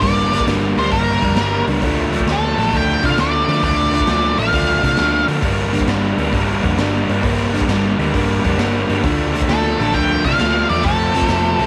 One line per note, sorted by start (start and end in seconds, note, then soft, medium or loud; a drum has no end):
0.02 0.40 G1 medium
0.02 0.30 G2 medium
0.02 0.31 D3 medium
0.02 0.31 G3 medium
0.02 0.31 A#3 medium
0.02 0.33 D4 loud
0.02 0.44 D5 medium
0.02 kick loud
0.02 open hi-hat medium
0.31 0.45 G2 medium
0.31 0.45 D3 medium
0.31 0.45 G3 medium
0.31 0.46 A#3 medium
0.31 0.47 D4 medium
0.31 open hi-hat medium
0.40 kick medium
0.46 0.72 G1 medium
0.46 0.77 G2 medium
0.46 0.77 D3 medium
0.46 0.78 G3 medium
0.46 0.78 A#3 medium
0.46 0.79 D4 medium
0.46 snare medium
0.46 open hi-hat medium
0.77 0.89 D2 medium
0.77 0.91 G2 medium
0.77 0.91 D3 medium
0.77 0.92 G3 medium
0.77 0.92 A#3 medium
0.77 0.93 D4 medium
0.77 0.92 C5 medium
0.77 open hi-hat soft
0.91 1.17 G1 medium
0.91 1.20 G2 medium
0.91 1.21 D3 medium
0.91 1.21 G3 medium
0.91 1.22 A#3 loud
0.91 1.23 D4 loud
0.91 1.64 A#4 medium
0.91 kick medium
0.91 open hi-hat medium
1.22 1.35 F2 medium
1.22 1.36 G2 medium
1.22 1.36 D3 medium
1.22 1.37 G3 medium
1.22 1.38 A#3 medium
1.22 1.38 D4 medium
1.22 kick medium
1.22 open hi-hat soft
1.36 1.62 G1 medium
1.36 1.67 G2 medium
1.36 1.67 D3 medium
1.36 1.67 G3 medium
1.36 1.68 A#3 medium
1.36 1.68 D4 medium
1.36 snare loud
1.36 open hi-hat medium
1.67 1.82 C#2 medium
1.67 1.82 G2 medium
1.67 1.82 D3 medium
1.67 1.82 G3 medium
1.67 1.82 A#3 medium
1.67 1.84 D4 medium
1.67 open hi-hat soft
1.82 2.20 D2 medium
1.82 2.13 D3 medium
1.82 2.13 F3 medium
1.82 2.14 A3 medium
1.82 2.14 D4 loud
1.82 kick loud
1.82 open hi-hat medium
2.13 2.27 D3 medium
2.13 2.28 F3 medium
2.13 2.28 A3 medium
2.13 2.28 D4 medium
2.13 open hi-hat soft
2.20 kick medium
2.26 2.52 D2 medium
2.26 2.57 D3 medium
2.26 2.57 F3 medium
2.26 2.58 A3 medium
2.26 2.59 D4 medium
2.26 snare medium
2.26 open hi-hat medium
2.32 2.76 A4 medium
2.58 2.70 A1 medium
2.58 2.71 D3 medium
2.58 2.72 F3 medium
2.58 2.72 A3 medium
2.58 2.73 D4 medium
2.58 open hi-hat soft
2.72 2.98 D2 medium
2.72 3.02 D3 medium
2.72 3.03 F3 medium
2.72 3.03 A3 medium
2.72 3.05 D4 medium
2.72 kick medium
2.72 open hi-hat medium
2.77 3.03 G5 medium
3.03 3.15 C3 medium
3.03 3.17 D3 medium
3.03 3.17 F3 medium
3.03 3.18 A3 medium
3.03 3.19 D4 medium
3.03 3.19 F5 medium
3.03 kick medium
3.03 open hi-hat soft
3.18 3.43 D2 medium
3.18 3.48 D3 medium
3.18 3.48 F3 medium
3.18 3.48 A3 medium
3.18 3.50 D4 medium
3.18 3.63 D5 medium
3.18 snare loud
3.18 open hi-hat medium
3.48 3.60 D3 medium
3.48 3.62 D3 medium
3.48 3.62 F3 medium
3.48 3.62 A3 medium
3.48 3.63 D4 medium
3.48 open hi-hat soft
3.63 4.00 D2 medium
3.63 3.91 D3 medium
3.63 3.92 F3 medium
3.63 3.93 A3 medium
3.63 3.93 D4 loud
3.63 4.39 D5 medium
3.63 kick loud
3.63 open hi-hat medium
3.92 4.07 D3 medium
3.92 4.07 F3 medium
3.92 4.07 A3 medium
3.92 4.08 D4 medium
3.92 open hi-hat soft
4.00 kick medium
4.07 4.33 D2 medium
4.07 4.36 D3 medium
4.07 4.37 F3 medium
4.07 4.37 A3 medium
4.07 4.38 D4 medium
4.07 snare loud
4.07 open hi-hat medium
4.37 4.50 A1 medium
4.37 4.52 D3 medium
4.37 4.52 F3 medium
4.37 4.52 A3 medium
4.37 4.53 D4 medium
4.37 5.25 F5 medium
4.37 open hi-hat soft
4.52 4.78 D2 medium
4.52 4.81 D3 medium
4.52 4.81 F3 medium
4.52 4.81 A3 loud
4.52 4.82 D4 medium
4.52 kick medium
4.52 open hi-hat medium
4.82 4.95 C3 medium
4.82 4.96 D3 medium
4.82 4.96 F3 medium
4.82 4.97 A3 medium
4.82 4.98 D4 medium
4.82 kick medium
4.82 open hi-hat medium
4.97 5.23 D2 medium
4.97 5.25 D3 medium
4.97 5.26 F3 medium
4.97 5.27 A3 medium
4.97 5.27 D4 medium
4.97 snare medium
4.97 open hi-hat medium
5.27 5.41 D3 medium
5.27 5.43 D3 medium
5.27 5.42 F3 medium
5.27 5.42 A3 medium
5.27 5.42 D4 medium
5.27 open hi-hat soft
5.41 5.80 G1 medium
5.41 5.72 G2 medium
5.41 5.72 D3 medium
5.41 5.73 G3 medium
5.41 5.73 A#3 loud
5.41 5.74 D4 medium
5.41 kick loud
5.41 open hi-hat medium
5.72 5.87 G2 medium
5.72 5.87 D3 medium
5.72 5.88 G3 medium
5.72 5.88 A#3 medium
5.72 5.89 D4 medium
5.72 open hi-hat soft
5.80 kick medium
5.87 6.13 G1 medium
5.87 6.19 G2 medium
5.87 6.18 D3 medium
5.87 6.20 G3 medium
5.87 6.20 A#3 medium
5.87 6.21 D4 medium
5.87 snare medium
5.87 open hi-hat medium
6.18 6.30 D2 medium
6.18 6.32 G2 medium
6.18 6.31 D3 medium
6.18 6.32 G3 medium
6.18 6.33 A#3 medium
6.18 6.33 D4 medium
6.18 open hi-hat soft
6.32 6.58 G1 medium
6.32 6.62 G2 medium
6.32 6.62 D3 medium
6.32 6.62 G3 medium
6.32 6.63 A#3 medium
6.32 6.63 D4 medium
6.32 kick loud
6.32 open hi-hat medium
6.63 6.75 F2 medium
6.63 6.76 G2 medium
6.63 6.77 D3 medium
6.63 6.77 G3 medium
6.63 6.77 A#3 medium
6.63 6.78 D4 medium
6.63 kick medium
6.63 open hi-hat soft
6.77 7.03 G1 medium
6.77 7.08 G2 medium
6.77 7.08 D3 medium
6.77 7.08 G3 medium
6.77 7.08 A#3 medium
6.77 7.10 D4 medium
6.77 snare loud
6.77 open hi-hat medium
7.09 7.22 G2 medium
7.09 7.21 G2 medium
7.09 7.22 D3 medium
7.09 7.23 G3 medium
7.09 7.23 A#3 medium
7.09 7.24 D4 medium
7.09 open hi-hat soft
7.23 7.60 G1 medium
7.23 7.52 G2 medium
7.23 7.52 D3 medium
7.23 7.52 G3 medium
7.23 7.53 A#3 loud
7.23 7.54 D4 loud
7.23 kick loud
7.23 open hi-hat medium
7.53 7.67 G2 medium
7.53 7.67 D3 medium
7.53 7.68 G3 medium
7.53 7.68 A#3 medium
7.53 7.69 D4 medium
7.53 open hi-hat soft
7.61 kick medium
7.68 7.93 G1 medium
7.68 7.97 G2 medium
7.68 7.98 D3 medium
7.68 7.98 G3 medium
7.68 7.99 A#3 medium
7.68 7.99 D4 medium
7.68 snare loud
7.68 open hi-hat medium
7.98 8.11 D2 medium
7.98 8.12 G2 medium
7.98 8.13 D3 medium
7.98 8.14 G3 medium
7.98 8.14 A#3 medium
7.98 8.13 D4 medium
7.98 open hi-hat soft
8.13 8.39 G1 medium
8.13 8.42 G2 medium
8.13 8.43 D3 medium
8.13 8.44 G3 medium
8.13 8.43 A#3 medium
8.13 8.44 D4 medium
8.13 kick medium
8.13 open hi-hat medium
8.44 8.56 F2 medium
8.44 8.56 G2 medium
8.44 8.56 D3 medium
8.44 8.57 G3 medium
8.44 8.58 A#3 medium
8.44 8.57 D4 medium
8.44 kick medium
8.44 open hi-hat medium
8.57 8.83 G1 medium
8.57 8.88 G2 medium
8.57 8.88 D3 medium
8.57 8.89 G3 medium
8.57 8.89 A#3 medium
8.57 8.89 D4 medium
8.57 snare loud
8.57 open hi-hat medium
8.89 9.03 G2 medium
8.89 9.01 G2 medium
8.89 9.03 D3 medium
8.89 9.03 G3 medium
8.89 9.03 A#3 medium
8.89 9.04 D4 medium
8.89 open hi-hat soft
9.03 9.41 D2 medium
9.03 9.34 D3 medium
9.03 9.35 F3 medium
9.03 9.35 A3 medium
9.03 9.35 D4 medium
9.03 kick loud
9.03 open hi-hat medium
9.35 9.48 D3 medium
9.35 9.50 F3 medium
9.35 9.50 A3 medium
9.35 9.50 D4 medium
9.35 open hi-hat medium
9.42 kick medium
9.48 9.74 D2 medium
9.48 9.78 D3 medium
9.48 9.79 F3 medium
9.48 9.80 A3 medium
9.48 9.79 D4 medium
9.48 9.95 A4 medium
9.48 snare medium
9.48 open hi-hat medium
9.79 9.92 A1 medium
9.79 9.93 D3 medium
9.79 9.93 F3 medium
9.79 9.94 A3 medium
9.79 9.94 D4 medium
9.79 open hi-hat soft
9.94 10.19 D2 medium
9.94 10.24 D3 medium
9.94 10.25 F3 medium
9.94 10.25 A3 medium
9.94 10.26 D4 medium
9.94 10.22 G5 loud
9.94 kick loud
9.94 open hi-hat medium
10.24 10.37 C3 medium
10.24 10.39 D3 medium
10.24 10.40 F3 medium
10.24 10.40 A3 medium
10.24 10.40 D4 medium
10.24 10.69 F5 medium
10.24 kick medium
10.24 open hi-hat soft
10.39 10.64 D2 medium
10.39 10.70 D3 medium
10.39 10.70 F3 medium
10.39 10.70 A3 medium
10.39 10.70 D4 medium
10.39 snare loud
10.39 open hi-hat medium
10.69 10.85 E2 medium
10.69 10.84 D3 medium
10.69 10.84 F3 medium
10.69 10.84 A3 medium
10.69 10.84 D4 medium
10.69 10.85 D5 medium
10.69 open hi-hat soft
10.83 11.21 F1 medium
10.83 11.13 F2 medium
10.83 11.13 C3 medium
10.83 11.13 F3 medium
10.83 11.14 A3 loud
10.83 11.14 C4 loud
10.83 11.66 A4 medium
10.83 kick loud
10.83 open hi-hat medium
11.14 11.27 F2 medium
11.14 11.27 C3 medium
11.14 11.28 F3 medium
11.14 11.28 A3 medium
11.14 11.28 C4 medium
11.14 open hi-hat soft
11.22 kick medium
11.28 11.54 F1 medium
11.28 11.59 F2 medium
11.28 11.60 C3 medium
11.28 11.60 F3 medium
11.28 11.60 A3 medium
11.28 11.61 C4 medium
11.28 snare loud
11.28 open hi-hat medium
11.59 11.66 C2 medium
11.59 11.66 F2 medium
11.59 11.66 C3 medium
11.59 11.66 F3 medium
11.59 11.66 A3 medium
11.59 11.66 C4 medium
11.59 open hi-hat soft